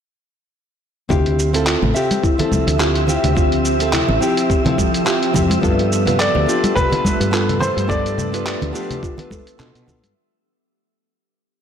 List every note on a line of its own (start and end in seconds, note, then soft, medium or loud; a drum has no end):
1.09 1.75 D2 medium
1.09 10.12 F3 medium
1.09 1.50 C4 medium
1.09 5.59 C4 medium
1.09 1.50 E4 medium
1.09 1.51 F4 medium
1.09 1.27 G4 medium
1.09 10.12 G4 medium
1.09 1.51 G4 medium
1.09 5.59 E5 medium
1.09 10.17 E5 medium
1.09 10.17 E6 medium
1.09 kick loud
1.09 low conga medium
1.09 cabasa soft
1.26 closed hi-hat soft
1.39 cabasa medium
1.53 1.92 C4 medium
1.53 1.92 E4 medium
1.53 1.92 F4 medium
1.53 1.93 A4 medium
1.53 closed hi-hat medium
1.53 cabasa soft
1.67 1.94 F4 medium
1.67 clap medium
1.67 cabasa soft
1.82 1.91 A1 medium
1.82 low conga medium
1.94 2.35 C4 medium
1.94 2.36 F4 medium
1.94 2.36 G4 medium
1.94 2.35 E5 medium
1.94 cabasa medium
2.11 closed hi-hat soft
2.11 high conga medium
2.11 cabasa soft
2.23 2.49 E4 medium
2.23 kick loud
2.23 cabasa soft
2.38 2.77 F3 medium
2.38 2.77 C4 medium
2.38 2.78 A4 medium
2.38 2.77 E5 medium
2.38 closed hi-hat soft
2.38 low conga medium
2.52 kick medium
2.52 high conga medium
2.52 low conga medium
2.52 cabasa medium
2.67 3.16 D2 medium
2.67 closed hi-hat medium
2.67 cabasa soft
2.78 3.05 C4 medium
2.78 3.05 E4 medium
2.78 3.05 F4 medium
2.78 2.97 G4 medium
2.78 3.06 G4 loud
2.78 clap loud
2.78 cabasa soft
2.95 closed hi-hat soft
3.07 3.33 C4 medium
3.07 3.33 E4 medium
3.07 3.34 F4 medium
3.07 3.34 G4 medium
3.07 low conga medium
3.07 cabasa medium
3.24 4.02 D2 medium
3.24 closed hi-hat medium
3.24 low conga medium
3.24 cabasa soft
3.35 3.76 C4 medium
3.35 3.64 F4 medium
3.35 3.77 F4 medium
3.35 3.78 G4 medium
3.35 3.77 E5 medium
3.35 kick loud
3.35 cabasa soft
3.52 closed hi-hat soft
3.65 cabasa medium
3.79 4.18 C4 medium
3.79 4.19 F4 medium
3.79 4.19 A4 medium
3.79 4.18 E5 medium
3.79 closed hi-hat medium
3.79 cabasa soft
3.93 4.19 E4 medium
3.93 clap loud
3.93 low conga medium
3.93 cabasa soft
4.08 4.18 A1 medium
4.08 low conga medium
4.20 4.62 F3 medium
4.20 4.61 C4 medium
4.20 4.62 E4 medium
4.20 4.63 G4 medium
4.20 cabasa medium
4.37 closed hi-hat medium
4.37 cabasa soft
4.50 4.67 G4 medium
4.50 kick loud
4.50 cabasa soft
4.64 5.04 F3 medium
4.64 5.03 C4 medium
4.64 5.03 E4 medium
4.64 5.04 A4 medium
4.64 closed hi-hat soft
4.64 low conga medium
4.78 kick loud
4.78 high conga medium
4.78 cabasa medium
4.94 closed hi-hat soft
4.94 cabasa soft
5.05 5.31 C4 loud
5.05 5.31 E4 medium
5.05 5.33 F4 medium
5.05 5.32 F4 medium
5.05 5.32 G4 loud
5.05 clap loud
5.05 cabasa soft
5.23 closed hi-hat soft
5.33 5.56 F2 medium
5.33 5.59 C4 medium
5.33 5.60 E4 medium
5.33 5.60 F4 medium
5.33 5.61 G4 medium
5.33 kick medium
5.33 low conga loud
5.33 low conga medium
5.33 cabasa medium
5.50 closed hi-hat medium
5.50 high conga medium
5.50 cabasa soft
5.61 6.28 G2 loud
5.61 10.12 A3 medium
5.61 6.03 B3 medium
5.61 10.12 B3 medium
5.61 6.03 D4 medium
5.61 6.03 F4 medium
5.61 5.89 F4 medium
5.61 6.04 A4 medium
5.61 kick loud
5.61 cabasa soft
5.79 closed hi-hat soft
5.92 cabasa medium
6.06 6.44 B3 medium
6.06 6.45 D4 medium
6.06 6.45 F4 medium
6.06 6.45 B4 medium
6.06 closed hi-hat medium
6.06 low conga medium
6.06 cabasa soft
6.19 6.36 A4 loud
6.19 6.72 D5 loud
6.19 clap loud
6.19 cabasa soft
6.35 6.44 D2 medium
6.35 low conga medium
6.46 6.87 B3 medium
6.46 6.88 D4 medium
6.46 6.88 F4 medium
6.46 6.89 G4 medium
6.46 cabasa medium
6.64 closed hi-hat medium
6.64 high conga medium
6.64 cabasa soft
6.75 7.04 G4 medium
6.75 7.63 B4 loud
6.75 kick loud
6.75 low conga medium
6.75 cabasa soft
6.90 7.29 B3 medium
6.90 7.29 D4 medium
6.90 7.30 F4 medium
6.90 7.30 B4 medium
6.90 closed hi-hat soft
6.90 low conga medium
7.05 kick medium
7.05 high conga medium
7.05 cabasa medium
7.20 7.69 G2 medium
7.20 closed hi-hat medium
7.20 cabasa soft
7.31 7.57 B3 medium
7.31 7.58 D4 medium
7.31 7.58 F4 medium
7.31 7.59 F4 medium
7.31 7.59 A4 loud
7.31 clap medium
7.31 cabasa soft
7.49 closed hi-hat soft
7.49 low conga medium
7.59 7.86 B3 medium
7.59 7.86 D4 medium
7.59 7.87 F4 medium
7.59 7.87 A4 medium
7.59 7.90 C5 medium
7.59 low conga medium
7.59 cabasa medium
7.77 8.54 G2 medium
7.77 closed hi-hat medium
7.77 cabasa soft
7.88 8.29 B3 medium
7.88 8.29 D4 medium
7.88 8.30 F4 medium
7.88 8.06 A4 medium
7.88 8.30 A4 medium
7.88 9.55 D5 medium
7.88 kick loud
7.88 cabasa soft
8.06 closed hi-hat soft
8.06 cabasa soft
8.18 low conga medium
8.18 cabasa medium
8.32 8.71 B3 medium
8.32 8.71 D4 medium
8.32 8.71 F4 medium
8.32 8.72 B4 medium
8.32 closed hi-hat soft
8.32 cabasa soft
8.46 8.73 G4 medium
8.46 clap loud
8.46 cabasa soft
8.62 8.71 D2 medium
8.62 closed hi-hat soft
8.62 low conga medium
8.73 9.14 B3 medium
8.73 9.14 D4 medium
8.73 9.15 F4 medium
8.73 9.15 G4 medium
8.73 cabasa medium
8.91 closed hi-hat soft
8.91 low conga medium
8.91 cabasa soft
9.03 9.29 F4 medium
9.03 kick loud
9.03 cabasa soft
9.17 9.56 B3 medium
9.17 9.56 D4 medium
9.17 9.56 F4 medium
9.17 9.57 B4 medium
9.17 closed hi-hat soft
9.17 low conga medium
9.31 9.48 A4 medium
9.31 kick loud
9.31 high conga medium
9.31 cabasa medium
9.47 closed hi-hat medium
9.47 cabasa soft
9.58 9.70 B2 medium
9.58 9.84 B3 medium
9.58 9.84 D4 medium
9.58 9.85 D4 medium
9.58 9.85 F4 medium
9.58 9.85 A4 loud
9.58 clap medium
9.58 low conga medium
9.58 cabasa soft
9.75 10.04 B2 medium
9.75 closed hi-hat soft
9.75 cabasa soft
9.86 10.12 B3 medium
9.86 10.13 D4 medium
9.86 10.13 F4 medium
9.86 10.14 A4 medium
9.86 kick medium
9.86 low conga medium
9.86 cabasa medium
10.03 10.12 G2 medium
10.03 closed hi-hat soft
10.03 high conga medium
10.03 cabasa soft